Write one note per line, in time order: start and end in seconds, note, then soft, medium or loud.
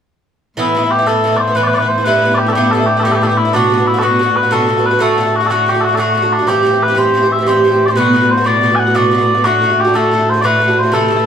0.57 0.73 A2 medium
0.57 6.48 A2 medium
0.57 0.75 E3 medium
0.57 0.76 B3 medium
0.57 0.76 E4 medium
0.57 0.91 E4 medium
0.75 0.83 A2 medium
0.75 0.84 E3 soft
0.75 0.84 B3 medium
0.75 0.82 E4 medium
0.83 1.01 E3 soft
0.83 1.00 B3 soft
0.83 0.97 E4 soft
0.91 1.07 G4 medium
0.98 1.06 E3 soft
0.98 1.07 B3 soft
0.98 1.07 E4 soft
1.06 1.23 A2 medium
1.06 1.24 E3 medium
1.06 1.25 B3 medium
1.06 1.26 E4 medium
1.06 1.36 A4 medium
1.24 1.32 A2 medium
1.24 1.33 E3 medium
1.24 1.33 B3 medium
1.24 1.31 E4 medium
1.32 1.50 E3 soft
1.32 1.48 B3 soft
1.32 1.46 E4 soft
1.36 1.56 C5 medium
1.36 1.40 D5 medium
1.48 1.55 E3 soft
1.48 1.56 B3 soft
1.48 1.56 E4 soft
1.55 1.72 A2 medium
1.55 1.73 E3 medium
1.55 1.74 B3 medium
1.55 1.75 E4 medium
1.55 1.63 B4 medium
1.63 1.74 B4 medium
1.63 1.67 D5 medium
1.73 1.81 A2 soft
1.73 1.82 E3 soft
1.73 1.83 B3 soft
1.73 1.81 E4 soft
1.73 1.78 D5 medium
1.78 1.97 E4 soft
1.78 1.88 B4 medium
1.84 1.99 E3 soft
1.84 1.99 B3 soft
1.84 2.04 C5 medium
1.98 2.06 E3 soft
1.98 2.06 B3 soft
1.98 2.05 E4 soft
2.04 2.21 G2 medium
2.04 2.23 D3 medium
2.04 2.24 B3 medium
2.04 2.24 E4 medium
2.04 2.34 B4 medium
2.22 2.30 G2 medium
2.22 2.31 D3 medium
2.22 2.32 B3 medium
2.22 2.30 E4 medium
2.31 2.48 D3 soft
2.31 2.47 B3 soft
2.31 2.45 E4 soft
2.31 2.38 D5 medium
2.38 2.49 G4 medium
2.46 2.55 D3 soft
2.46 2.55 B3 soft
2.46 2.54 E4 soft
2.46 2.53 A4 medium
2.53 2.72 G2 medium
2.53 2.73 D3 medium
2.53 2.71 G4 medium
2.57 2.73 B3 medium
2.57 2.74 E4 medium
2.71 2.80 G2 medium
2.71 2.81 D3 medium
2.71 2.81 B3 medium
2.71 2.86 A4 medium
2.77 2.79 E4 soft
2.77 2.96 E4 soft
2.82 2.97 D3 soft
2.82 2.97 B3 soft
2.86 3.00 G4 medium
2.97 3.04 D3 soft
2.97 3.05 B3 soft
2.97 3.04 E4 soft
2.97 3.03 A4 medium
3.03 3.20 G2 medium
3.03 3.22 D3 medium
3.03 3.22 B3 medium
3.03 3.23 E4 medium
3.03 3.12 G4 medium
3.12 3.23 G4 medium
3.12 3.16 A4 medium
3.21 3.29 G2 soft
3.21 3.30 D3 soft
3.21 3.30 B3 soft
3.21 3.28 E4 soft
3.21 3.27 A4 medium
3.27 3.44 E4 soft
3.27 3.37 G4 medium
3.31 3.47 D3 soft
3.31 3.46 B3 soft
3.37 3.53 E4 medium
3.45 3.53 B3 soft
3.45 3.53 E4 soft
3.49 3.53 D3 soft
3.53 3.69 B2 medium
3.53 3.71 D3 medium
3.53 3.71 B3 medium
3.53 3.87 D4 medium
3.53 3.72 F#4 medium
3.70 3.78 B2 medium
3.70 3.79 D3 medium
3.70 3.78 B3 medium
3.70 3.76 F#4 medium
3.78 3.95 D3 soft
3.78 3.95 B3 soft
3.78 3.93 F#4 soft
3.87 3.99 E4 medium
3.94 4.01 D3 soft
3.94 4.02 B3 soft
3.94 4.02 F#4 medium
3.99 4.18 B2 soft
3.99 4.19 D3 medium
3.99 4.20 B3 medium
3.99 4.36 F#4 medium
3.99 4.03 A4 medium
4.03 4.20 F#4 medium
4.19 4.27 B2 medium
4.19 4.28 D3 soft
4.19 4.26 B3 medium
4.19 4.25 F#4 medium
4.26 4.44 D3 soft
4.26 4.43 B3 soft
4.26 4.42 F#4 soft
4.36 4.52 B4 medium
4.43 4.50 D3 soft
4.43 4.51 B3 soft
4.43 4.51 F#4 soft
4.51 4.65 B2 medium
4.51 4.67 D3 medium
4.51 4.68 B3 medium
4.51 4.69 F#4 medium
4.51 4.86 A4 medium
4.67 4.76 B2 soft
4.67 4.77 D3 soft
4.67 4.77 B3 soft
4.67 4.76 F#4 medium
4.77 4.93 D3 soft
4.77 4.92 B3 soft
4.77 4.90 F#4 soft
4.86 5.01 B4 medium
4.91 4.99 D3 soft
4.91 5.00 B3 soft
4.91 5.00 F#4 soft
4.99 5.16 A2 medium
4.99 5.17 D3 medium
4.99 5.18 A3 medium
4.99 5.19 F#4 medium
4.99 5.36 A4 medium
5.17 5.26 A2 soft
5.17 5.26 D3 medium
5.17 5.26 A3 medium
5.17 5.23 F#4 medium
5.25 5.43 D3 soft
5.25 5.41 A3 soft
5.25 5.39 F#4 soft
5.36 5.46 F#4 medium
5.40 5.50 A3 soft
5.40 5.49 F#4 soft
5.45 5.49 D3 soft
5.45 5.51 A4 medium
5.50 5.65 A2 medium
5.50 5.67 D3 medium
5.50 5.68 A3 medium
5.50 5.69 F#4 medium
5.50 5.68 F#4 medium
5.66 5.75 A2 soft
5.66 5.76 D3 soft
5.66 5.74 A3 medium
5.66 5.73 F#4 medium
5.66 5.81 G4 medium
5.74 5.91 D3 soft
5.74 5.89 A3 soft
5.74 5.88 F#4 soft
5.81 5.95 F#4 medium
5.81 5.85 A4 medium
5.89 5.97 D3 soft
5.89 5.98 A3 soft
5.89 5.98 F#4 soft
5.95 6.13 A2 medium
5.95 6.14 D3 medium
5.95 5.99 A4 medium
5.99 6.16 A3 medium
5.99 6.33 F#4 medium
5.99 6.16 F#4 medium
6.14 6.23 A2 soft
6.14 6.24 D3 soft
6.14 6.22 A3 medium
6.14 6.21 F#4 soft
6.22 6.41 D3 soft
6.22 6.39 A3 soft
6.22 6.38 F#4 soft
6.33 6.48 D4 medium
6.39 6.47 D3 soft
6.39 6.48 A3 soft
6.39 6.48 F#4 soft
6.47 6.62 G2 medium
6.47 11.26 A2 medium
6.47 6.63 E3 medium
6.47 6.64 C4 medium
6.47 6.83 G4 medium
6.47 6.65 G4 medium
6.63 6.72 G2 medium
6.63 6.73 E3 medium
6.63 6.72 C4 medium
6.63 6.70 G4 medium
6.71 6.90 E3 soft
6.71 6.89 C4 soft
6.71 6.87 G4 soft
6.83 6.98 B4 medium
6.88 6.94 E3 soft
6.88 6.95 C4 soft
6.88 6.96 G4 soft
6.95 7.13 G2 medium
6.95 7.14 E3 medium
6.95 7.15 C4 medium
6.95 7.15 G4 medium
6.95 7.32 C5 medium
7.14 7.22 G2 soft
7.14 7.23 E3 medium
7.14 7.23 C4 medium
7.14 7.21 G4 medium
7.22 7.40 E3 soft
7.22 7.39 C4 soft
7.22 7.37 G4 soft
7.32 7.48 E5 medium
7.39 7.46 E3 soft
7.39 7.47 C4 soft
7.39 7.47 G4 soft
7.46 7.63 G2 medium
7.46 7.64 E3 medium
7.46 7.65 C4 medium
7.46 7.66 G4 medium
7.46 7.86 C5 medium
7.64 7.72 G2 soft
7.64 7.73 E3 soft
7.64 7.72 C4 soft
7.64 7.70 G4 medium
7.72 7.90 E3 soft
7.72 7.89 C4 soft
7.72 7.87 G4 soft
7.86 7.96 G4 soft
7.86 7.97 C5 medium
7.86 7.89 D5 medium
7.90 7.97 E3 soft
7.90 7.97 C4 soft
7.95 8.12 B2 medium
7.95 8.13 D3 medium
7.95 8.15 B3 medium
7.95 8.15 F#4 medium
7.95 8.31 B4 medium
8.13 8.21 B2 medium
8.13 8.22 D3 medium
8.13 8.22 B3 soft
8.13 8.19 F#4 medium
8.20 8.38 B3 soft
8.20 8.36 F#4 soft
8.25 8.39 D3 soft
8.31 8.46 C5 medium
8.37 8.44 D3 soft
8.37 8.45 B3 soft
8.37 8.45 F#4 medium
8.44 8.60 B2 medium
8.44 8.62 D3 medium
8.44 8.63 B3 medium
8.44 8.64 F#4 medium
8.44 8.75 D5 loud
8.61 8.70 B2 soft
8.61 8.71 D3 medium
8.61 8.71 B3 medium
8.65 8.69 F#4 medium
8.70 8.88 D3 soft
8.70 8.87 B3 soft
8.70 8.85 F#4 soft
8.75 8.96 F#5 medium
8.75 8.79 G#5 medium
8.86 8.94 D3 soft
8.86 8.95 B3 soft
8.86 8.95 F#4 soft
8.95 9.10 B2 medium
8.95 9.11 D3 medium
8.95 9.13 B3 medium
8.95 9.13 F#4 medium
8.95 9.45 D5 medium
9.11 9.20 B2 soft
9.11 9.20 D3 medium
9.11 9.20 B3 medium
9.11 9.17 F#4 soft
9.18 9.35 B3 soft
9.18 9.33 F#4 soft
9.23 9.37 D3 soft
9.35 9.44 D3 soft
9.35 9.44 B3 soft
9.35 9.43 F#4 soft
9.44 9.61 A2 medium
9.44 9.62 D3 medium
9.44 9.63 A3 medium
9.44 9.80 F#4 medium
9.44 9.63 F#4 medium
9.62 9.70 A2 soft
9.62 9.71 D3 medium
9.62 9.70 A3 medium
9.62 9.69 F#4 medium
9.70 9.86 D3 soft
9.70 9.86 A3 soft
9.70 9.83 F#4 soft
9.80 9.95 G4 medium
9.84 9.94 D3 soft
9.84 9.94 A3 soft
9.84 9.93 F#4 soft
9.94 10.10 A2 medium
9.94 10.12 D3 medium
9.94 10.12 A3 medium
9.94 10.13 F#4 medium
9.94 10.29 A4 medium
10.11 10.19 A2 soft
10.11 10.20 D3 medium
10.11 10.18 A3 medium
10.11 10.17 F#4 medium
10.18 10.36 D3 soft
10.18 10.34 A3 soft
10.18 10.32 F#4 soft
10.29 10.41 C5 medium
10.34 10.43 D3 soft
10.34 10.43 A3 soft
10.34 10.42 F#4 soft
10.41 10.59 A2 medium
10.41 10.60 D3 medium
10.41 10.61 A3 medium
10.41 10.79 B4 medium
10.41 10.45 D5 medium
10.45 10.62 F#4 medium
10.60 10.68 A2 soft
10.60 10.69 D3 medium
10.60 10.68 A3 soft
10.60 10.66 F#4 soft
10.68 10.85 D3 soft
10.68 10.84 A3 soft
10.68 10.82 F#4 soft
10.79 10.91 F#4 soft
10.79 10.93 C5 medium
10.85 10.93 D3 soft
10.85 10.92 A3 soft
10.92 11.07 C3 medium
10.92 11.09 E3 medium
10.92 11.10 A3 medium
10.92 11.11 E4 medium
10.92 11.26 A4 medium
11.08 11.17 C3 medium
11.08 11.18 E3 medium
11.08 11.17 A3 soft
11.08 11.15 E4 medium
11.16 11.26 E3 soft
11.16 11.26 A3 soft
11.16 11.26 E4 soft